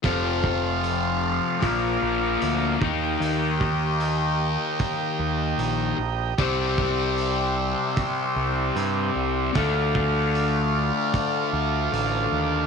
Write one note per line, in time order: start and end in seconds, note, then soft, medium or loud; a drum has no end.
0.03 1.39 F1 medium
0.03 1.59 F2 medium
0.03 1.60 C3 medium
0.03 1.61 F3 medium
0.03 2.79 F4 soft
0.03 1.61 A4 soft
0.03 1.61 C5 soft
0.03 2.79 F5 medium
0.03 kick medium
0.03 open hi-hat soft
0.44 kick medium
0.84 open hi-hat soft
1.60 1.96 A#1 medium
1.60 2.78 A#2 medium
1.60 2.79 F3 medium
1.60 2.79 A#3 medium
1.60 6.34 A#4 medium
1.60 2.80 D5 medium
1.60 kick medium
1.60 open hi-hat soft
2.02 2.36 A#1 medium
2.42 2.76 D2 medium
2.42 open hi-hat soft
2.80 3.15 D#2 medium
2.80 5.96 D#3 medium
2.80 5.96 A#3 medium
2.80 5.97 D#4 medium
2.80 9.51 G4 medium
2.80 6.35 D#5 soft
2.80 6.35 G5 medium
2.80 kick medium
3.20 4.56 D#2 medium
3.20 open hi-hat soft
3.61 kick medium
4.01 open hi-hat soft
4.79 kick medium
4.79 open hi-hat soft
5.19 5.53 D#2 medium
5.58 5.92 A#1 medium
5.58 open hi-hat soft
5.98 6.32 A#1 medium
6.38 7.74 C2 medium
6.38 9.53 C3 medium
6.38 9.54 G3 medium
6.38 9.54 C4 medium
6.38 9.52 C5 soft
6.38 12.67 D5 soft
6.38 9.52 E5 medium
6.38 kick loud
6.38 open hi-hat soft
6.78 kick medium
7.18 open hi-hat soft
7.97 kick medium
7.97 open hi-hat soft
8.36 8.70 C2 medium
8.76 9.10 G2 medium
8.76 open hi-hat soft
9.16 9.49 C2 medium
9.53 10.90 D2 medium
9.53 12.67 D3 medium
9.53 12.67 A3 medium
9.53 12.67 D4 medium
9.53 12.67 F4 medium
9.53 12.67 A4 soft
9.53 12.67 F5 medium
9.53 kick medium
9.53 open hi-hat soft
9.95 kick medium
10.35 open hi-hat soft
11.14 kick medium
11.14 open hi-hat soft
11.53 11.87 D2 medium
11.92 12.26 A1 medium
11.92 open hi-hat soft
12.32 12.66 D#2 medium